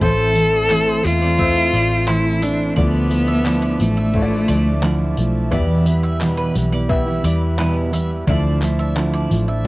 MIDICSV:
0, 0, Header, 1, 8, 480
1, 0, Start_track
1, 0, Key_signature, 0, "minor"
1, 0, Tempo, 688863
1, 8, Time_signature, 4, 2, 24, 8
1, 6739, End_track
2, 0, Start_track
2, 0, Title_t, "Harmonium"
2, 0, Program_c, 0, 20
2, 15, Note_on_c, 0, 84, 80
2, 18, Note_on_c, 0, 69, 79
2, 18, Note_on_c, 0, 72, 71
2, 19, Note_on_c, 0, 76, 64
2, 1911, Note_off_c, 0, 84, 0
2, 1912, Note_off_c, 0, 69, 0
2, 1912, Note_off_c, 0, 72, 0
2, 1931, Note_on_c, 0, 53, 76
2, 1932, Note_on_c, 0, 81, 86
2, 1934, Note_on_c, 0, 74, 71
2, 3830, Note_off_c, 0, 53, 0
2, 3830, Note_off_c, 0, 81, 0
2, 3831, Note_off_c, 0, 74, 0
2, 3843, Note_on_c, 0, 67, 74
2, 3845, Note_on_c, 0, 71, 68
2, 3845, Note_on_c, 0, 83, 83
2, 5744, Note_off_c, 0, 76, 0
2, 5746, Note_off_c, 0, 67, 0
2, 5747, Note_off_c, 0, 71, 0
2, 5747, Note_off_c, 0, 83, 0
2, 5766, Note_on_c, 0, 53, 81
2, 5766, Note_on_c, 0, 81, 79
2, 5768, Note_on_c, 0, 74, 70
2, 6739, Note_off_c, 0, 53, 0
2, 6739, Note_off_c, 0, 74, 0
2, 6739, Note_off_c, 0, 81, 0
2, 6739, End_track
3, 0, Start_track
3, 0, Title_t, "Mandolin"
3, 0, Program_c, 1, 25
3, 9, Note_on_c, 1, 72, 100
3, 236, Note_off_c, 1, 72, 0
3, 371, Note_on_c, 1, 74, 70
3, 483, Note_off_c, 1, 74, 0
3, 613, Note_on_c, 1, 72, 74
3, 724, Note_off_c, 1, 72, 0
3, 852, Note_on_c, 1, 74, 73
3, 963, Note_off_c, 1, 74, 0
3, 969, Note_on_c, 1, 76, 84
3, 1196, Note_off_c, 1, 76, 0
3, 1208, Note_on_c, 1, 74, 86
3, 1322, Note_off_c, 1, 74, 0
3, 1445, Note_on_c, 1, 72, 78
3, 1560, Note_off_c, 1, 72, 0
3, 1687, Note_on_c, 1, 76, 76
3, 1801, Note_off_c, 1, 76, 0
3, 1924, Note_on_c, 1, 74, 93
3, 2153, Note_off_c, 1, 74, 0
3, 2283, Note_on_c, 1, 76, 76
3, 2399, Note_off_c, 1, 76, 0
3, 2522, Note_on_c, 1, 74, 80
3, 2638, Note_off_c, 1, 74, 0
3, 2767, Note_on_c, 1, 76, 67
3, 2881, Note_off_c, 1, 76, 0
3, 3124, Note_on_c, 1, 74, 82
3, 3353, Note_off_c, 1, 74, 0
3, 3364, Note_on_c, 1, 74, 76
3, 3703, Note_off_c, 1, 74, 0
3, 3844, Note_on_c, 1, 74, 102
3, 4073, Note_off_c, 1, 74, 0
3, 4204, Note_on_c, 1, 76, 71
3, 4319, Note_off_c, 1, 76, 0
3, 4442, Note_on_c, 1, 71, 76
3, 4558, Note_off_c, 1, 71, 0
3, 4686, Note_on_c, 1, 74, 76
3, 4800, Note_off_c, 1, 74, 0
3, 4805, Note_on_c, 1, 76, 82
3, 5046, Note_off_c, 1, 76, 0
3, 5047, Note_on_c, 1, 74, 86
3, 5161, Note_off_c, 1, 74, 0
3, 5287, Note_on_c, 1, 71, 86
3, 5401, Note_off_c, 1, 71, 0
3, 5526, Note_on_c, 1, 76, 81
3, 5640, Note_off_c, 1, 76, 0
3, 5766, Note_on_c, 1, 74, 100
3, 5994, Note_off_c, 1, 74, 0
3, 6125, Note_on_c, 1, 76, 74
3, 6240, Note_off_c, 1, 76, 0
3, 6365, Note_on_c, 1, 74, 85
3, 6480, Note_off_c, 1, 74, 0
3, 6605, Note_on_c, 1, 76, 68
3, 6720, Note_off_c, 1, 76, 0
3, 6739, End_track
4, 0, Start_track
4, 0, Title_t, "Upright piano"
4, 0, Program_c, 2, 0
4, 0, Control_c, 2, 64, 127
4, 1, Note_on_c, 2, 57, 69
4, 7, Note_on_c, 2, 60, 63
4, 12, Note_on_c, 2, 64, 62
4, 14, Note_on_c, 2, 72, 73
4, 16, Control_c, 2, 64, 0
4, 157, Control_c, 2, 64, 127
4, 744, Note_off_c, 2, 57, 0
4, 746, Note_off_c, 2, 60, 0
4, 749, Note_off_c, 2, 64, 0
4, 750, Note_off_c, 2, 72, 0
4, 966, Note_on_c, 2, 57, 68
4, 969, Note_on_c, 2, 60, 65
4, 977, Note_on_c, 2, 76, 61
4, 981, Note_on_c, 2, 72, 75
4, 1706, Note_off_c, 2, 57, 0
4, 1707, Note_off_c, 2, 60, 0
4, 1711, Note_off_c, 2, 76, 0
4, 1713, Note_off_c, 2, 72, 0
4, 1929, Note_on_c, 2, 57, 67
4, 1932, Note_on_c, 2, 64, 68
4, 1935, Control_c, 2, 64, 0
4, 1936, Note_on_c, 2, 65, 65
4, 1941, Note_on_c, 2, 74, 73
4, 2052, Control_c, 2, 64, 127
4, 2667, Note_off_c, 2, 57, 0
4, 2669, Note_off_c, 2, 64, 0
4, 2670, Note_off_c, 2, 65, 0
4, 2673, Note_off_c, 2, 74, 0
4, 2882, Note_on_c, 2, 57, 70
4, 2886, Note_on_c, 2, 64, 62
4, 2892, Note_on_c, 2, 65, 64
4, 2895, Note_on_c, 2, 73, 59
4, 2936, Note_off_c, 2, 73, 0
4, 2942, Note_on_c, 2, 74, 79
4, 3624, Note_off_c, 2, 57, 0
4, 3626, Note_off_c, 2, 64, 0
4, 3629, Note_off_c, 2, 65, 0
4, 3654, Note_off_c, 2, 74, 0
4, 3837, Note_on_c, 2, 59, 86
4, 3842, Note_on_c, 2, 64, 76
4, 3845, Note_on_c, 2, 67, 73
4, 3852, Note_on_c, 2, 76, 89
4, 3855, Control_c, 2, 64, 0
4, 3958, Control_c, 2, 64, 127
4, 4581, Note_off_c, 2, 59, 0
4, 4584, Note_off_c, 2, 64, 0
4, 4586, Note_off_c, 2, 67, 0
4, 4589, Note_off_c, 2, 76, 0
4, 4800, Note_on_c, 2, 59, 88
4, 4803, Note_on_c, 2, 64, 79
4, 4810, Note_on_c, 2, 67, 78
4, 4814, Note_on_c, 2, 76, 92
4, 5543, Note_off_c, 2, 59, 0
4, 5545, Note_off_c, 2, 64, 0
4, 5548, Note_off_c, 2, 67, 0
4, 5550, Note_off_c, 2, 76, 0
4, 5765, Note_on_c, 2, 62, 86
4, 5769, Note_on_c, 2, 65, 73
4, 5775, Control_c, 2, 64, 0
4, 5775, Note_on_c, 2, 69, 80
4, 5780, Note_on_c, 2, 76, 94
4, 5895, Control_c, 2, 64, 127
4, 6506, Note_off_c, 2, 62, 0
4, 6508, Note_off_c, 2, 65, 0
4, 6510, Note_off_c, 2, 69, 0
4, 6513, Note_off_c, 2, 76, 0
4, 6739, End_track
5, 0, Start_track
5, 0, Title_t, "Cello"
5, 0, Program_c, 3, 42
5, 17, Note_on_c, 3, 69, 114
5, 736, Note_on_c, 3, 65, 106
5, 746, Note_off_c, 3, 69, 0
5, 1447, Note_on_c, 3, 64, 90
5, 1458, Note_off_c, 3, 65, 0
5, 1688, Note_on_c, 3, 62, 88
5, 1699, Note_off_c, 3, 64, 0
5, 1926, Note_on_c, 3, 59, 102
5, 1936, Note_off_c, 3, 62, 0
5, 2648, Note_on_c, 3, 57, 83
5, 2658, Note_off_c, 3, 59, 0
5, 3607, Note_off_c, 3, 57, 0
5, 6739, End_track
6, 0, Start_track
6, 0, Title_t, "Steel-string acoustic guitar"
6, 0, Program_c, 4, 25
6, 7, Note_on_c, 4, 45, 70
6, 12, Note_on_c, 4, 52, 70
6, 18, Note_on_c, 4, 57, 71
6, 19, Note_on_c, 4, 60, 80
6, 23, Note_on_c, 4, 64, 82
6, 236, Note_off_c, 4, 52, 0
6, 244, Note_on_c, 4, 52, 58
6, 245, Note_off_c, 4, 57, 0
6, 247, Note_off_c, 4, 45, 0
6, 253, Note_off_c, 4, 60, 0
6, 253, Note_on_c, 4, 57, 53
6, 255, Note_off_c, 4, 64, 0
6, 261, Note_on_c, 4, 60, 59
6, 266, Note_on_c, 4, 64, 64
6, 480, Note_off_c, 4, 52, 0
6, 483, Note_on_c, 4, 45, 77
6, 484, Note_off_c, 4, 57, 0
6, 488, Note_off_c, 4, 60, 0
6, 488, Note_on_c, 4, 52, 79
6, 490, Note_off_c, 4, 64, 0
6, 492, Note_on_c, 4, 57, 73
6, 496, Note_on_c, 4, 60, 80
6, 498, Note_on_c, 4, 64, 74
6, 715, Note_off_c, 4, 52, 0
6, 724, Note_off_c, 4, 57, 0
6, 724, Note_on_c, 4, 52, 61
6, 725, Note_off_c, 4, 45, 0
6, 730, Note_off_c, 4, 60, 0
6, 732, Note_on_c, 4, 57, 54
6, 733, Note_off_c, 4, 64, 0
6, 738, Note_on_c, 4, 60, 62
6, 746, Note_on_c, 4, 64, 64
6, 845, Note_off_c, 4, 52, 0
6, 847, Note_off_c, 4, 60, 0
6, 850, Note_off_c, 4, 57, 0
6, 856, Note_on_c, 4, 60, 46
6, 857, Note_off_c, 4, 64, 0
6, 866, Note_on_c, 4, 57, 46
6, 1080, Note_on_c, 4, 64, 53
6, 1083, Note_off_c, 4, 60, 0
6, 1091, Note_on_c, 4, 60, 47
6, 1094, Note_off_c, 4, 57, 0
6, 1102, Note_on_c, 4, 57, 45
6, 1202, Note_off_c, 4, 57, 0
6, 1203, Note_off_c, 4, 64, 0
6, 1207, Note_off_c, 4, 60, 0
6, 1210, Note_on_c, 4, 57, 61
6, 1216, Note_on_c, 4, 60, 57
6, 1442, Note_off_c, 4, 57, 0
6, 1442, Note_on_c, 4, 45, 72
6, 1444, Note_off_c, 4, 60, 0
6, 1446, Note_on_c, 4, 52, 78
6, 1451, Note_on_c, 4, 57, 82
6, 1453, Note_on_c, 4, 60, 74
6, 1457, Note_on_c, 4, 64, 76
6, 1668, Note_off_c, 4, 52, 0
6, 1676, Note_on_c, 4, 52, 57
6, 1679, Note_off_c, 4, 57, 0
6, 1684, Note_off_c, 4, 45, 0
6, 1686, Note_off_c, 4, 60, 0
6, 1687, Note_on_c, 4, 57, 59
6, 1692, Note_off_c, 4, 64, 0
6, 1694, Note_on_c, 4, 60, 67
6, 1701, Note_on_c, 4, 64, 61
6, 1921, Note_off_c, 4, 52, 0
6, 1921, Note_on_c, 4, 50, 76
6, 1923, Note_off_c, 4, 57, 0
6, 1927, Note_on_c, 4, 53, 71
6, 1930, Note_off_c, 4, 60, 0
6, 1931, Note_off_c, 4, 64, 0
6, 1931, Note_on_c, 4, 57, 80
6, 1935, Note_on_c, 4, 62, 73
6, 1939, Note_on_c, 4, 64, 79
6, 2150, Note_off_c, 4, 53, 0
6, 2158, Note_on_c, 4, 53, 53
6, 2159, Note_off_c, 4, 57, 0
6, 2164, Note_off_c, 4, 50, 0
6, 2166, Note_off_c, 4, 62, 0
6, 2167, Note_on_c, 4, 57, 59
6, 2173, Note_off_c, 4, 64, 0
6, 2174, Note_on_c, 4, 62, 59
6, 2181, Note_on_c, 4, 64, 65
6, 2395, Note_off_c, 4, 53, 0
6, 2398, Note_off_c, 4, 57, 0
6, 2399, Note_on_c, 4, 50, 75
6, 2403, Note_off_c, 4, 62, 0
6, 2404, Note_on_c, 4, 53, 77
6, 2406, Note_off_c, 4, 64, 0
6, 2406, Note_on_c, 4, 57, 79
6, 2412, Note_on_c, 4, 62, 88
6, 2414, Note_on_c, 4, 64, 88
6, 2629, Note_off_c, 4, 53, 0
6, 2638, Note_off_c, 4, 57, 0
6, 2638, Note_on_c, 4, 53, 50
6, 2642, Note_off_c, 4, 50, 0
6, 2646, Note_off_c, 4, 62, 0
6, 2646, Note_on_c, 4, 57, 55
6, 2650, Note_off_c, 4, 64, 0
6, 2654, Note_on_c, 4, 62, 58
6, 2659, Note_on_c, 4, 64, 68
6, 2748, Note_off_c, 4, 64, 0
6, 2756, Note_on_c, 4, 64, 50
6, 2762, Note_off_c, 4, 53, 0
6, 2763, Note_off_c, 4, 62, 0
6, 2766, Note_off_c, 4, 57, 0
6, 2771, Note_on_c, 4, 62, 47
6, 2781, Note_on_c, 4, 57, 46
6, 2987, Note_off_c, 4, 64, 0
6, 2995, Note_on_c, 4, 64, 55
6, 2999, Note_off_c, 4, 62, 0
6, 3007, Note_on_c, 4, 62, 47
6, 3008, Note_off_c, 4, 57, 0
6, 3016, Note_on_c, 4, 57, 44
6, 3114, Note_on_c, 4, 53, 50
6, 3116, Note_off_c, 4, 57, 0
6, 3121, Note_off_c, 4, 64, 0
6, 3123, Note_off_c, 4, 62, 0
6, 3125, Note_on_c, 4, 57, 60
6, 3131, Note_on_c, 4, 62, 61
6, 3138, Note_on_c, 4, 64, 58
6, 3355, Note_off_c, 4, 53, 0
6, 3358, Note_on_c, 4, 50, 88
6, 3359, Note_off_c, 4, 57, 0
6, 3364, Note_off_c, 4, 62, 0
6, 3364, Note_on_c, 4, 53, 87
6, 3366, Note_off_c, 4, 64, 0
6, 3368, Note_on_c, 4, 57, 88
6, 3372, Note_on_c, 4, 62, 86
6, 3374, Note_on_c, 4, 64, 90
6, 3592, Note_off_c, 4, 53, 0
6, 3601, Note_on_c, 4, 53, 67
6, 3602, Note_off_c, 4, 50, 0
6, 3602, Note_off_c, 4, 57, 0
6, 3609, Note_off_c, 4, 62, 0
6, 3610, Note_off_c, 4, 64, 0
6, 3610, Note_on_c, 4, 57, 76
6, 3618, Note_on_c, 4, 62, 65
6, 3624, Note_on_c, 4, 64, 68
6, 3839, Note_on_c, 4, 40, 82
6, 3843, Note_on_c, 4, 47, 78
6, 3844, Note_off_c, 4, 53, 0
6, 3846, Note_off_c, 4, 57, 0
6, 3847, Note_on_c, 4, 52, 86
6, 3848, Note_off_c, 4, 64, 0
6, 3848, Note_on_c, 4, 55, 91
6, 3850, Note_off_c, 4, 62, 0
6, 3853, Note_on_c, 4, 59, 84
6, 3856, Note_on_c, 4, 64, 99
6, 4071, Note_off_c, 4, 52, 0
6, 4079, Note_on_c, 4, 52, 65
6, 4080, Note_off_c, 4, 55, 0
6, 4083, Note_off_c, 4, 40, 0
6, 4085, Note_off_c, 4, 47, 0
6, 4086, Note_off_c, 4, 59, 0
6, 4088, Note_on_c, 4, 55, 68
6, 4091, Note_off_c, 4, 64, 0
6, 4094, Note_on_c, 4, 59, 75
6, 4103, Note_on_c, 4, 64, 76
6, 4321, Note_on_c, 4, 40, 78
6, 4323, Note_off_c, 4, 52, 0
6, 4324, Note_off_c, 4, 55, 0
6, 4326, Note_on_c, 4, 47, 85
6, 4327, Note_off_c, 4, 59, 0
6, 4330, Note_off_c, 4, 64, 0
6, 4330, Note_on_c, 4, 52, 82
6, 4332, Note_on_c, 4, 55, 87
6, 4335, Note_on_c, 4, 59, 86
6, 4338, Note_on_c, 4, 64, 86
6, 4552, Note_off_c, 4, 52, 0
6, 4559, Note_off_c, 4, 55, 0
6, 4560, Note_on_c, 4, 52, 70
6, 4564, Note_off_c, 4, 40, 0
6, 4566, Note_off_c, 4, 47, 0
6, 4566, Note_off_c, 4, 59, 0
6, 4567, Note_on_c, 4, 55, 67
6, 4572, Note_off_c, 4, 64, 0
6, 4575, Note_on_c, 4, 59, 71
6, 4582, Note_on_c, 4, 64, 70
6, 4670, Note_off_c, 4, 64, 0
6, 4678, Note_on_c, 4, 64, 56
6, 4680, Note_off_c, 4, 59, 0
6, 4683, Note_off_c, 4, 52, 0
6, 4687, Note_off_c, 4, 55, 0
6, 4688, Note_on_c, 4, 59, 49
6, 4696, Note_on_c, 4, 55, 55
6, 4702, Note_on_c, 4, 52, 45
6, 4911, Note_off_c, 4, 64, 0
6, 4920, Note_off_c, 4, 59, 0
6, 4920, Note_on_c, 4, 64, 61
6, 4926, Note_off_c, 4, 55, 0
6, 4929, Note_on_c, 4, 59, 57
6, 4934, Note_off_c, 4, 52, 0
6, 4935, Note_on_c, 4, 55, 52
6, 4942, Note_on_c, 4, 52, 52
6, 5029, Note_off_c, 4, 52, 0
6, 5037, Note_on_c, 4, 52, 54
6, 5039, Note_off_c, 4, 55, 0
6, 5043, Note_off_c, 4, 64, 0
6, 5047, Note_off_c, 4, 59, 0
6, 5047, Note_on_c, 4, 55, 68
6, 5055, Note_on_c, 4, 59, 62
6, 5061, Note_on_c, 4, 64, 65
6, 5276, Note_off_c, 4, 52, 0
6, 5278, Note_on_c, 4, 40, 83
6, 5280, Note_off_c, 4, 55, 0
6, 5282, Note_on_c, 4, 47, 85
6, 5283, Note_off_c, 4, 59, 0
6, 5284, Note_off_c, 4, 64, 0
6, 5284, Note_on_c, 4, 52, 88
6, 5289, Note_on_c, 4, 55, 95
6, 5291, Note_on_c, 4, 59, 82
6, 5293, Note_on_c, 4, 64, 103
6, 5512, Note_off_c, 4, 52, 0
6, 5520, Note_off_c, 4, 55, 0
6, 5520, Note_on_c, 4, 52, 66
6, 5522, Note_off_c, 4, 40, 0
6, 5525, Note_off_c, 4, 47, 0
6, 5527, Note_off_c, 4, 59, 0
6, 5528, Note_on_c, 4, 55, 72
6, 5530, Note_off_c, 4, 64, 0
6, 5535, Note_on_c, 4, 59, 65
6, 5543, Note_on_c, 4, 64, 72
6, 5759, Note_on_c, 4, 50, 77
6, 5761, Note_off_c, 4, 52, 0
6, 5764, Note_on_c, 4, 53, 90
6, 5766, Note_off_c, 4, 55, 0
6, 5768, Note_off_c, 4, 64, 0
6, 5769, Note_off_c, 4, 59, 0
6, 5769, Note_on_c, 4, 57, 77
6, 5772, Note_on_c, 4, 62, 82
6, 5776, Note_on_c, 4, 64, 90
6, 5988, Note_off_c, 4, 53, 0
6, 5997, Note_off_c, 4, 57, 0
6, 5997, Note_on_c, 4, 53, 63
6, 6003, Note_off_c, 4, 50, 0
6, 6005, Note_off_c, 4, 62, 0
6, 6005, Note_on_c, 4, 57, 67
6, 6011, Note_off_c, 4, 64, 0
6, 6013, Note_on_c, 4, 62, 72
6, 6020, Note_on_c, 4, 64, 73
6, 6238, Note_off_c, 4, 53, 0
6, 6241, Note_on_c, 4, 50, 86
6, 6242, Note_off_c, 4, 57, 0
6, 6244, Note_off_c, 4, 62, 0
6, 6247, Note_on_c, 4, 53, 89
6, 6250, Note_off_c, 4, 64, 0
6, 6251, Note_on_c, 4, 57, 90
6, 6253, Note_on_c, 4, 62, 81
6, 6258, Note_on_c, 4, 64, 88
6, 6469, Note_off_c, 4, 53, 0
6, 6477, Note_on_c, 4, 53, 70
6, 6478, Note_off_c, 4, 57, 0
6, 6484, Note_off_c, 4, 50, 0
6, 6485, Note_off_c, 4, 62, 0
6, 6486, Note_on_c, 4, 57, 65
6, 6492, Note_off_c, 4, 64, 0
6, 6493, Note_on_c, 4, 62, 67
6, 6501, Note_on_c, 4, 64, 68
6, 6589, Note_off_c, 4, 64, 0
6, 6598, Note_on_c, 4, 64, 54
6, 6602, Note_off_c, 4, 53, 0
6, 6602, Note_off_c, 4, 62, 0
6, 6607, Note_off_c, 4, 57, 0
6, 6610, Note_on_c, 4, 62, 50
6, 6623, Note_on_c, 4, 57, 49
6, 6739, Note_off_c, 4, 57, 0
6, 6739, Note_off_c, 4, 62, 0
6, 6739, Note_off_c, 4, 64, 0
6, 6739, End_track
7, 0, Start_track
7, 0, Title_t, "Fingered electric bass"
7, 0, Program_c, 5, 33
7, 9, Note_on_c, 5, 33, 104
7, 700, Note_off_c, 5, 33, 0
7, 731, Note_on_c, 5, 40, 77
7, 1181, Note_off_c, 5, 40, 0
7, 1207, Note_on_c, 5, 33, 87
7, 1899, Note_off_c, 5, 33, 0
7, 1930, Note_on_c, 5, 38, 94
7, 2620, Note_off_c, 5, 38, 0
7, 2650, Note_on_c, 5, 33, 70
7, 3100, Note_off_c, 5, 33, 0
7, 3129, Note_on_c, 5, 38, 97
7, 3580, Note_off_c, 5, 38, 0
7, 3609, Note_on_c, 5, 35, 82
7, 3828, Note_off_c, 5, 35, 0
7, 3847, Note_on_c, 5, 40, 105
7, 4539, Note_off_c, 5, 40, 0
7, 4568, Note_on_c, 5, 35, 76
7, 5019, Note_off_c, 5, 35, 0
7, 5044, Note_on_c, 5, 40, 91
7, 5737, Note_off_c, 5, 40, 0
7, 5765, Note_on_c, 5, 38, 94
7, 6458, Note_off_c, 5, 38, 0
7, 6487, Note_on_c, 5, 33, 76
7, 6739, Note_off_c, 5, 33, 0
7, 6739, End_track
8, 0, Start_track
8, 0, Title_t, "Drums"
8, 9, Note_on_c, 9, 36, 107
8, 79, Note_off_c, 9, 36, 0
8, 246, Note_on_c, 9, 54, 55
8, 316, Note_off_c, 9, 54, 0
8, 487, Note_on_c, 9, 39, 100
8, 557, Note_off_c, 9, 39, 0
8, 729, Note_on_c, 9, 54, 60
8, 798, Note_off_c, 9, 54, 0
8, 967, Note_on_c, 9, 36, 109
8, 1036, Note_off_c, 9, 36, 0
8, 1209, Note_on_c, 9, 54, 60
8, 1278, Note_off_c, 9, 54, 0
8, 1446, Note_on_c, 9, 39, 105
8, 1516, Note_off_c, 9, 39, 0
8, 1687, Note_on_c, 9, 54, 67
8, 1757, Note_off_c, 9, 54, 0
8, 1928, Note_on_c, 9, 36, 107
8, 1997, Note_off_c, 9, 36, 0
8, 2165, Note_on_c, 9, 54, 62
8, 2235, Note_off_c, 9, 54, 0
8, 2409, Note_on_c, 9, 39, 104
8, 2478, Note_off_c, 9, 39, 0
8, 2646, Note_on_c, 9, 54, 62
8, 2716, Note_off_c, 9, 54, 0
8, 2883, Note_on_c, 9, 36, 99
8, 2953, Note_off_c, 9, 36, 0
8, 3123, Note_on_c, 9, 54, 63
8, 3192, Note_off_c, 9, 54, 0
8, 3365, Note_on_c, 9, 39, 110
8, 3434, Note_off_c, 9, 39, 0
8, 3605, Note_on_c, 9, 54, 68
8, 3674, Note_off_c, 9, 54, 0
8, 3846, Note_on_c, 9, 36, 112
8, 3915, Note_off_c, 9, 36, 0
8, 4083, Note_on_c, 9, 54, 64
8, 4153, Note_off_c, 9, 54, 0
8, 4326, Note_on_c, 9, 39, 106
8, 4395, Note_off_c, 9, 39, 0
8, 4567, Note_on_c, 9, 54, 63
8, 4636, Note_off_c, 9, 54, 0
8, 4804, Note_on_c, 9, 36, 105
8, 4873, Note_off_c, 9, 36, 0
8, 5044, Note_on_c, 9, 54, 66
8, 5114, Note_off_c, 9, 54, 0
8, 5286, Note_on_c, 9, 39, 108
8, 5356, Note_off_c, 9, 39, 0
8, 5527, Note_on_c, 9, 54, 66
8, 5597, Note_off_c, 9, 54, 0
8, 5767, Note_on_c, 9, 36, 101
8, 5836, Note_off_c, 9, 36, 0
8, 6004, Note_on_c, 9, 54, 61
8, 6005, Note_on_c, 9, 39, 90
8, 6074, Note_off_c, 9, 39, 0
8, 6074, Note_off_c, 9, 54, 0
8, 6247, Note_on_c, 9, 39, 111
8, 6316, Note_off_c, 9, 39, 0
8, 6488, Note_on_c, 9, 54, 58
8, 6557, Note_off_c, 9, 54, 0
8, 6739, End_track
0, 0, End_of_file